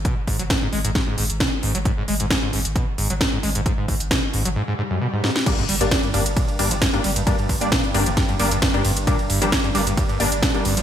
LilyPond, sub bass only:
\new Staff \with { instrumentName = "Sub bass" } { \clef bass \time 4/4 \key g \phrygian \tempo 4 = 133 r8 aes,,16 aes,,16 r8 aes,,16 aes,,16 r8 aes,,16 aes,,16 r8 aes,,16 aes,,16 | r8 aes,,16 aes,,16 r8 aes,,16 aes,,16 r8 aes,,16 aes,,16 r8 aes,,16 aes,,16 | r8 aes,,16 aes,,16 r8 aes,,16 aes,,16 r2 | r8 g,,16 g,,16 r8 g,,16 g,,16 r8 g,,16 g,,16 r8 g,,16 g,,16 |
r8 g,,16 g,,16 r8 g,,16 g,,16 r8 g,,16 g,,16 r8 g,,16 g,,16 | r8 g,,16 g,,16 r8 g,,16 g,,16 r8 g,,16 g,,16 r8 g,,16 g,,16 | }